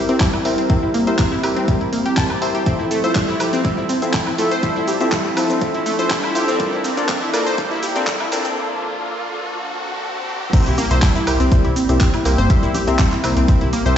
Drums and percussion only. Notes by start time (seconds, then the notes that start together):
0.09 closed hi-hat
0.20 kick, clap, closed hi-hat
0.33 high woodblock
0.45 open hi-hat
0.58 closed hi-hat
0.70 kick, closed hi-hat
0.94 open hi-hat
1.07 closed hi-hat
1.19 kick, clap, closed hi-hat
1.43 open hi-hat, high woodblock
1.56 closed hi-hat
1.68 kick, closed hi-hat
1.81 closed hi-hat
1.93 open hi-hat
2.06 closed hi-hat
2.17 kick, clap, closed hi-hat
2.30 high woodblock
2.42 open hi-hat
2.55 closed hi-hat
2.66 kick, closed hi-hat, shaker
2.91 open hi-hat, shaker
3.04 closed hi-hat, shaker
3.15 kick, clap, closed hi-hat, shaker
3.40 open hi-hat, high woodblock, shaker
3.53 closed hi-hat, shaker
3.65 kick, closed hi-hat, shaker
3.89 open hi-hat, shaker
4.02 closed hi-hat, shaker
4.13 kick, clap, closed hi-hat, shaker
4.27 high woodblock
4.38 open hi-hat, shaker
4.51 closed hi-hat, shaker
4.63 kick, closed hi-hat, shaker
4.88 open hi-hat, shaker
5.01 closed hi-hat, shaker
5.12 kick, clap, closed hi-hat, shaker
5.37 open hi-hat, high woodblock, shaker
5.50 closed hi-hat, shaker
5.61 kick, closed hi-hat, shaker
5.74 closed hi-hat
5.86 open hi-hat, shaker
5.99 closed hi-hat, shaker
6.10 kick, clap, closed hi-hat, shaker
6.24 high woodblock
6.35 open hi-hat, shaker
6.48 closed hi-hat, shaker
6.60 kick, closed hi-hat, shaker
6.84 open hi-hat, shaker
6.97 closed hi-hat, shaker
7.09 kick, clap, closed hi-hat, shaker
7.34 open hi-hat, high woodblock, shaker
7.46 closed hi-hat, shaker
7.58 kick, closed hi-hat, shaker
7.83 open hi-hat, shaker
7.96 closed hi-hat, shaker
8.07 kick, clap, closed hi-hat, shaker
8.20 high woodblock
8.32 open hi-hat, shaker
8.45 closed hi-hat, shaker
10.53 kick, closed hi-hat, crash, shaker
10.66 closed hi-hat, shaker
10.78 open hi-hat, high conga, high woodblock, shaker
10.91 closed hi-hat, shaker
11.02 kick, clap, closed hi-hat, shaker
11.15 closed hi-hat, high conga, shaker
11.27 open hi-hat, high woodblock, shaker
11.40 closed hi-hat, shaker
11.52 kick, closed hi-hat, high conga, shaker
11.65 closed hi-hat, high woodblock
11.76 open hi-hat, shaker
11.89 closed hi-hat, high conga, high woodblock, shaker
12.00 kick, clap, closed hi-hat, shaker
12.14 closed hi-hat, high woodblock, shaker
12.25 open hi-hat, shaker
12.38 closed hi-hat, high conga, low conga, shaker
12.50 kick, closed hi-hat, shaker
12.63 closed hi-hat, shaker
12.75 open hi-hat, high conga, low conga, high woodblock, shaker
12.88 closed hi-hat, shaker
12.99 kick, clap, closed hi-hat, shaker
13.12 clap, closed hi-hat, high conga, shaker
13.24 open hi-hat, high woodblock, shaker
13.37 closed hi-hat, shaker
13.48 kick, closed hi-hat, high conga, shaker
13.61 closed hi-hat
13.73 open hi-hat, high woodblock, shaker
13.86 closed hi-hat, high conga, shaker